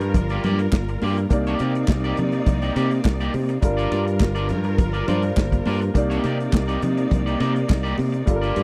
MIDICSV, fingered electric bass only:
0, 0, Header, 1, 2, 480
1, 0, Start_track
1, 0, Key_signature, -3, "minor"
1, 0, Tempo, 580833
1, 1078, Time_signature, 4, 2, 24, 8
1, 7133, End_track
2, 0, Start_track
2, 0, Title_t, "Fingered electric bass"
2, 0, Program_c, 0, 33
2, 0, Note_on_c, 0, 43, 99
2, 122, Note_on_c, 0, 31, 101
2, 134, Note_off_c, 0, 43, 0
2, 310, Note_off_c, 0, 31, 0
2, 361, Note_on_c, 0, 43, 84
2, 550, Note_off_c, 0, 43, 0
2, 602, Note_on_c, 0, 31, 89
2, 790, Note_off_c, 0, 31, 0
2, 845, Note_on_c, 0, 43, 88
2, 1032, Note_off_c, 0, 43, 0
2, 1083, Note_on_c, 0, 36, 109
2, 1271, Note_off_c, 0, 36, 0
2, 1325, Note_on_c, 0, 48, 103
2, 1512, Note_off_c, 0, 48, 0
2, 1558, Note_on_c, 0, 36, 122
2, 1748, Note_off_c, 0, 36, 0
2, 1803, Note_on_c, 0, 48, 87
2, 1991, Note_off_c, 0, 48, 0
2, 2040, Note_on_c, 0, 36, 92
2, 2229, Note_off_c, 0, 36, 0
2, 2282, Note_on_c, 0, 48, 102
2, 2470, Note_off_c, 0, 48, 0
2, 2522, Note_on_c, 0, 36, 96
2, 2710, Note_off_c, 0, 36, 0
2, 2762, Note_on_c, 0, 48, 89
2, 2950, Note_off_c, 0, 48, 0
2, 2998, Note_on_c, 0, 31, 102
2, 3187, Note_off_c, 0, 31, 0
2, 3236, Note_on_c, 0, 43, 96
2, 3476, Note_on_c, 0, 31, 108
2, 3488, Note_off_c, 0, 43, 0
2, 3721, Note_on_c, 0, 43, 99
2, 3734, Note_off_c, 0, 31, 0
2, 3955, Note_on_c, 0, 31, 100
2, 3967, Note_off_c, 0, 43, 0
2, 4145, Note_off_c, 0, 31, 0
2, 4199, Note_on_c, 0, 43, 86
2, 4388, Note_off_c, 0, 43, 0
2, 4440, Note_on_c, 0, 31, 86
2, 4628, Note_off_c, 0, 31, 0
2, 4681, Note_on_c, 0, 43, 92
2, 4869, Note_off_c, 0, 43, 0
2, 4919, Note_on_c, 0, 36, 100
2, 5108, Note_off_c, 0, 36, 0
2, 5160, Note_on_c, 0, 48, 95
2, 5348, Note_off_c, 0, 48, 0
2, 5401, Note_on_c, 0, 36, 106
2, 5589, Note_off_c, 0, 36, 0
2, 5640, Note_on_c, 0, 48, 96
2, 5828, Note_off_c, 0, 48, 0
2, 5883, Note_on_c, 0, 36, 101
2, 6070, Note_off_c, 0, 36, 0
2, 6119, Note_on_c, 0, 48, 100
2, 6308, Note_off_c, 0, 48, 0
2, 6364, Note_on_c, 0, 36, 101
2, 6551, Note_off_c, 0, 36, 0
2, 6601, Note_on_c, 0, 48, 98
2, 6789, Note_off_c, 0, 48, 0
2, 6840, Note_on_c, 0, 31, 93
2, 7028, Note_off_c, 0, 31, 0
2, 7081, Note_on_c, 0, 43, 99
2, 7133, Note_off_c, 0, 43, 0
2, 7133, End_track
0, 0, End_of_file